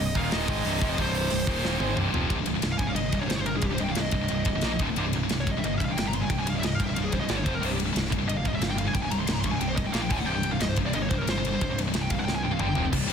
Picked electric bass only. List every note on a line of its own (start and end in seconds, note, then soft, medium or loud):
0.00 0.14 C1 medium
0.15 0.31 D#1 medium
0.33 0.47 D#1 medium
0.48 0.63 G#1 loud
0.64 0.80 C1 medium
0.81 0.97 F1 medium
0.98 1.29 C1 loud
1.31 1.47 C1 medium
1.47 1.63 D#1 medium
1.64 1.79 D#1 loud
1.79 1.95 G#1 loud
1.97 2.12 C1 medium
2.13 2.29 F1 medium
2.30 2.58 C1 medium
2.63 2.77 C1 medium
2.79 2.93 C1 medium
2.96 3.10 G1 loud
3.13 3.27 C1 medium
3.29 3.57 G1 medium
3.62 3.76 C1 loud
3.79 3.93 C1 medium
3.97 4.11 C1 medium
4.12 4.26 C1 medium
4.30 4.63 C1 medium
4.63 4.77 A#1 medium
4.79 4.93 D1 medium
4.97 5.24 C1 loud
5.29 5.43 C1 medium
5.46 5.60 C1 medium
5.64 5.77 G1 medium
5.80 5.94 C1 medium
5.97 6.24 G1 medium
6.30 6.43 C1 loud
6.48 6.61 C1 medium
6.64 6.77 C1 medium
6.79 6.93 C1 medium
6.98 7.24 C1 medium
7.30 7.43 G1 medium
7.45 7.59 F1 medium
7.62 7.90 C1 medium
7.96 8.09 C1 medium
8.12 8.26 C1 medium
8.29 8.42 G1 medium
8.45 8.59 C1 medium
8.60 8.88 G1 medium
8.94 9.08 C1 loud
9.10 9.24 C1 medium
9.27 9.41 C1 medium
9.44 9.58 C1 medium
9.60 9.88 C1 medium
9.94 10.08 A#1 loud
10.10 10.24 D1 medium
10.27 10.55 C1 loud
10.60 10.74 C1 medium
10.77 10.91 C1 medium
10.95 11.08 G1 loud
11.11 11.24 C1 medium
11.28 11.55 G1 medium
11.62 11.75 C1 loud
11.78 11.91 C1 medium
11.95 12.08 C1 loud
12.11 12.24 C1 medium
12.27 12.54 C1 loud
12.60 12.74 G1 medium
12.77 12.90 F1 medium
12.93 13.09 C1 medium
13.09 13.13 C1 medium